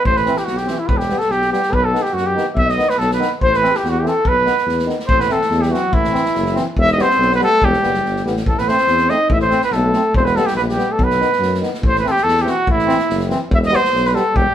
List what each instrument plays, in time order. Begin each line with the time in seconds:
0.05 tuba A1, trumpet C5, alto saxophone C5, kick
0.16 trumpet B4, alto saxophone B4, snare
0.25 euphonium E3, trombone C4, snare
0.36 alto saxophone G4, trumpet G4, snare
0.45 tuba B1, trumpet F#4, alto saxophone F#4, snare
0.57 alto saxophone G4, trumpet G4, snare
0.66 euphonium E3, trombone C4, snare
0.79 trumpet E4, alto saxophone E4
0.88 tuba E1, trumpet B4, alto saxophone B4, kick
0.97 trumpet G4, alto saxophone G4, snare
1.08 euphonium G3, trombone B3, snare
1.18 trumpet A4, alto saxophone A4, snare
1.29 tuba B1, alto saxophone G4, trumpet G4, snare
1.41 snare
1.50 euphonium G3, trombone B3, alto saxophone G4, trumpet G4, snare
1.62 snare
1.70 tuba B1, alto saxophone B4, trumpet B4, kick
1.82 alto saxophone A4, trumpet A4
1.92 euphonium D#3, trombone B3, snare
2.02 alto saxophone G4, trumpet G4, snare
2.10 tuba F#2, alto saxophone F#4, trumpet F#4
2.17 snare
2.22 alto saxophone G4, trumpet G4
2.34 euphonium D#3, trombone B3, snare
2.54 tuba B1, alto saxophone E5, trumpet E5, kick
2.65 alto saxophone D#5, snare
2.70 trumpet D#5
2.76 euphonium D#3, trombone B3, snare
2.89 trumpet B4, alto saxophone B4, snare
2.98 tuba B1, trumpet A4, alto saxophone A4, snare
3.11 alto saxophone B4, trumpet B4, snare
3.18 euphonium D#3, trombone B3, snare
3.40 tuba A1, alto saxophone C5, trumpet C5, kick
3.53 alto saxophone B4, trumpet B4, snare
3.60 euphonium E3, trombone C4, snare
3.71 alto saxophone G4, snare
3.76 trumpet G4
3.83 tuba E2, alto saxophone F#4, snare
3.89 trumpet F#4, alto saxophone G4
3.99 euphonium E3, trumpet G4, alto saxophone A4
4.04 trombone C4, snare
4.08 trumpet A4
4.25 tuba B1, alto saxophone B4, trumpet B4, kick
4.44 euphonium D#3, trombone B3, snare
4.57 snare
4.66 tuba E2, snare
4.79 snare
4.86 euphonium D#3, trombone B3, snare
4.99 snare
5.07 tuba A1, alto saxophone C4, trumpet C5, kick
5.20 alto saxophone B3, trumpet B4, snare
5.29 euphonium E3, alto saxophone A3, trombone C4, trumpet A4, snare
5.41 snare
5.50 tuba E2, snare
5.61 alto saxophone G3, trumpet G4, snare
5.69 euphonium E3, trombone C4, trumpet F#4
5.74 alto saxophone F#3, snare
5.92 tuba A1, alto saxophone E3, trumpet E4, kick
6.04 snare
6.11 euphonium E3, trombone C4, snare
6.25 snare
6.35 tuba F#1, snare
6.45 snare
6.54 euphonium E3, trombone C4, snare
6.77 tuba E1, trumpet E5, kick
6.81 alto saxophone E4
6.87 alto saxophone D#4, snare
6.92 trumpet D#5
6.96 euphonium G3, trombone B3, snare
7.01 alto saxophone C4, trumpet C5
7.10 snare
7.18 tuba B1, snare
7.31 alto saxophone B3, trumpet B4, snare
7.39 euphonium G3, trombone B3, snare
7.43 alto saxophone A3, trumpet A4
7.62 tuba E1, alto saxophone G3, trumpet G4, kick
7.73 snare
7.82 tuba F#1, euphonium G3, trombone B3, snare
7.94 snare
8.04 tuba G1, snare
8.16 snare
8.24 tuba A1, euphonium G3, trombone B3, snare
8.36 snare
8.46 tuba A1, alto saxophone A3, trumpet A4, kick
8.58 alto saxophone B3, trumpet B4, snare
8.67 euphonium A3, trombone C4, alto saxophone C4, trumpet C5, snare
8.77 snare
8.87 tuba E2, snare
8.97 snare
9.07 euphonium A3, trombone C4, trumpet D#5, snare
9.13 alto saxophone D#4
9.30 tuba A1, trumpet E5, kick
9.35 alto saxophone E4
9.40 trumpet C5, snare
9.46 euphonium A3, alto saxophone C4, snare
9.51 trombone C4
9.61 trumpet B4, snare
9.67 alto saxophone B3
9.72 tuba B1, trumpet A4, snare
9.77 alto saxophone A3
9.93 euphonium A3, trombone C4, snare
10.14 tuba E1, alto saxophone C4, trumpet C5, kick
10.24 alto saxophone B3, trumpet B4, snare
10.35 euphonium G3, alto saxophone A3, trombone B3, trumpet A4, snare
10.46 trumpet G4, snare
10.50 alto saxophone G3
10.54 tuba A#1, trumpet B4, snare
10.59 alto saxophone B3
10.67 alto saxophone G3, trumpet G4, snare
10.76 euphonium G3, trombone B3, snare
10.89 alto saxophone A3, trumpet A4
10.99 tuba B1, alto saxophone B3, kick
11.04 trumpet B4
11.10 snare
11.19 euphonium D#3, trombone B3, snare
11.32 snare
11.39 tuba F#2, snare
11.54 snare
11.60 euphonium D#3, trombone B3, snare
11.74 snare
11.82 tuba A1, trumpet C5, kick
11.95 trumpet B4, snare
12.02 euphonium E3, trombone C4
12.06 trumpet A4, snare
12.11 trumpet G4
12.16 snare
12.23 tuba E2, trumpet A4
12.28 snare
12.36 snare
12.41 euphonium E3, trombone C4, trumpet G4
12.46 trumpet F#4, snare
12.67 tuba A1, trumpet E4, kick
12.79 snare
12.86 euphonium E3, trombone C4, snare
12.98 snare
13.09 tuba F#1, snare
13.19 snare
13.29 euphonium E3, trombone C4, snare
13.49 tuba E1, kick
13.54 trumpet E5
13.63 trumpet D#5, snare
13.69 euphonium G3, trombone B3
13.73 trumpet C5, snare
13.84 snare
13.93 tuba B1, snare
14.05 trumpet B4, snare
14.13 euphonium G3, trombone B3, trumpet A4, snare
14.33 tuba E1, alto saxophone G3, trumpet G4, kick